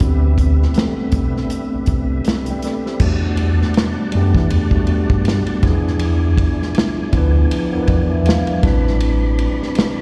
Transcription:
0.00 0.67 D2 loud
0.00 0.64 E3 medium
0.00 0.65 A3 medium
0.00 0.66 B3 medium
0.00 0.66 C4 medium
0.00 2.97 D4 medium
0.00 2.98 G4 medium
0.00 2.97 B4 medium
0.00 2.98 E5 medium
0.00 kick loud
0.00 closed hi-hat medium
0.05 0.67 G4 medium
0.38 kick medium
0.38 closed hi-hat medium
0.63 snare soft
0.74 2.01 E3 medium
0.74 2.01 A3 medium
0.74 2.02 B3 medium
0.74 snare loud
0.74 closed hi-hat medium
0.79 2.03 C4 medium
0.79 2.03 A4 medium
1.12 1.46 B1 medium
1.12 kick medium
1.12 closed hi-hat medium
1.37 snare soft
1.50 closed hi-hat medium
1.75 1.81 C2 soft
1.86 2.21 C2 medium
1.86 kick medium
1.86 closed hi-hat medium
2.25 snare medium
2.25 closed hi-hat medium
2.46 2.64 G5 medium
2.46 closed hi-hat medium
2.51 2.64 D5 medium
2.62 2.85 A4 medium
2.62 2.85 D5 medium
2.62 snare soft
2.62 closed hi-hat medium
2.86 3.22 G4 medium
2.86 3.21 C5 medium
2.86 snare soft
3.00 3.53 E2 loud
3.00 3.08 F#3 medium
3.00 5.61 G3 medium
3.00 3.96 A3 medium
3.00 3.97 B3 medium
3.00 3.97 D4 medium
3.00 10.02 D5 medium
3.00 5.61 F#5 medium
3.00 5.61 A5 medium
3.00 kick loud
3.00 crash loud
3.04 3.99 G3 medium
3.04 3.98 F#4 medium
3.37 ride medium
3.62 3.68 F#2 medium
3.62 snare soft
3.74 snare loud
3.74 ride medium
4.12 4.33 F#2 medium
4.12 4.60 G3 medium
4.12 4.61 A3 medium
4.12 4.62 B3 medium
4.12 4.62 D4 medium
4.12 ride medium
4.17 4.63 G4 loud
4.35 4.49 E3 loud
4.35 kick loud
4.35 snare soft
4.50 4.85 E2 medium
4.50 ride medium
4.71 4.78 F#3 medium
4.71 5.64 A3 medium
4.71 5.62 B3 medium
4.71 kick medium
4.75 5.67 G3 medium
4.75 5.63 D4 medium
4.75 5.66 F#4 medium
4.87 ride soft
5.10 5.43 G2 medium
5.10 kick loud
5.25 snare loud
5.25 ride medium
5.47 ride soft
5.62 6.29 E2 loud
5.62 6.88 F3 medium
5.62 8.61 F3 medium
5.62 6.89 B3 medium
5.62 6.89 D4 medium
5.62 8.61 E4 medium
5.62 6.90 E4 medium
5.62 8.60 G#5 medium
5.62 kick loud
5.62 ride medium
5.66 6.90 G#4 loud
5.66 snare soft
5.87 snare soft
5.99 ride medium
6.38 kick medium
6.38 ride medium
6.62 snare soft
6.75 snare loud
6.75 ride medium
7.13 7.46 D2 medium
7.13 7.61 F3 medium
7.13 7.61 B3 medium
7.13 7.62 D4 medium
7.13 7.63 E4 medium
7.13 kick medium
7.13 ride medium
7.17 7.63 B4 loud
7.51 ride medium
7.71 7.80 E2 medium
7.71 8.63 F3 medium
7.71 8.63 B3 medium
7.71 8.63 D4 medium
7.71 8.64 E4 medium
7.76 7.80 A#4 medium
7.82 8.65 B4 loud
7.87 8.22 E2 loud
7.87 8.09 D5 medium
7.87 kick medium
7.87 ride soft
8.11 8.26 E5 medium
8.26 8.61 F5 medium
8.26 snare loud
8.26 ride medium
8.47 ride soft
8.62 9.48 A1 loud
8.62 9.88 G3 loud
8.62 10.02 G3 medium
8.62 10.02 C4 medium
8.62 9.88 C4 medium
8.62 9.89 D4 medium
8.62 9.90 E4 medium
8.62 8.99 A5 medium
8.62 10.02 B5 medium
8.62 kick loud
8.62 ride medium
8.66 9.90 B4 loud
8.66 snare soft
8.87 snare soft
9.00 ride medium
9.39 ride medium
9.62 9.68 A1 medium
9.62 snare soft
9.75 snare loud
9.75 ride medium

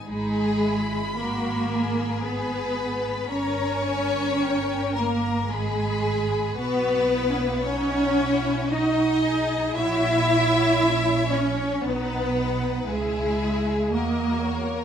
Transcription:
0.06 3.26 G#1 medium
0.06 1.12 G#3 loud
0.06 1.13 G#3 medium
0.06 0.59 D#4 medium
0.06 1.13 G#4 loud
0.06 2.20 B5 medium
0.63 1.17 E4 medium
1.16 2.21 A#3 loud
1.16 2.24 A#3 medium
1.16 1.71 F#4 medium
1.16 2.22 A#4 medium
1.71 3.30 G#4 medium
2.23 3.30 B3 medium
2.23 3.28 B3 loud
2.23 3.30 B4 medium
2.23 3.28 B5 medium
3.29 5.45 G1 medium
3.29 4.95 C#4 loud
3.29 4.92 C#4 loud
3.29 4.38 A#4 medium
3.29 4.91 C#5 loud
3.29 3.85 A#5 medium
3.85 4.39 G#5 medium
4.41 5.48 A#4 medium
4.41 4.95 G5 medium
4.95 5.50 A#3 loud
4.95 5.50 A#3 medium
4.95 5.50 A#4 medium
4.95 5.50 A#5 medium
5.49 6.54 G#1 medium
5.49 6.57 G#3 loud
5.49 6.57 G#3 medium
5.49 6.57 G#4 loud
5.49 6.58 G#4 medium
5.49 6.58 B5 medium
6.57 9.72 B1 medium
6.57 7.27 B3 loud
6.57 7.63 B3 loud
6.57 7.10 F#4 medium
6.57 7.63 B4 loud
6.57 7.63 F#5 medium
7.11 7.64 E4 medium
7.29 7.38 C#4 loud
7.38 7.47 B3 loud
7.47 7.56 A#3 medium
7.57 7.65 B3 medium
7.65 8.71 C#4 loud
7.65 8.69 C#4 loud
7.65 8.18 D#4 medium
7.65 8.71 C#5 loud
7.65 8.69 F#5 medium
8.19 8.71 E4 medium
8.70 9.74 D#4 loud
8.70 9.76 D#4 loud
8.70 9.24 F#4 medium
8.70 9.76 D#5 loud
8.70 9.76 D#5 medium
9.24 9.75 G#4 medium
9.75 11.80 A#1 medium
9.75 11.32 E4 loud
9.75 11.29 E4 loud
9.75 10.28 F#4 loud
9.75 11.80 C#5 medium
9.75 11.29 E5 loud
10.29 10.80 F#4 medium
10.81 11.85 C#4 medium
11.32 11.84 C#4 loud
11.32 11.83 C#4 loud
11.32 11.84 C#5 medium
11.84 12.87 B1 medium
11.84 12.87 B3 loud
11.84 12.87 B3 medium
11.84 12.36 D#4 medium
11.84 12.87 B4 medium
11.84 12.87 F#5 medium
12.37 12.86 D#4 medium
12.87 13.89 C#2 medium
12.87 13.89 G#3 loud
12.87 13.91 E4 medium
12.87 13.91 G#4 medium
12.87 13.92 E5 medium
13.91 14.85 E2 medium
13.91 14.85 A#3 loud
13.91 14.85 F#4 medium
13.91 14.85 A#4 medium
13.91 14.42 D#5 medium
14.44 14.85 C#5 medium

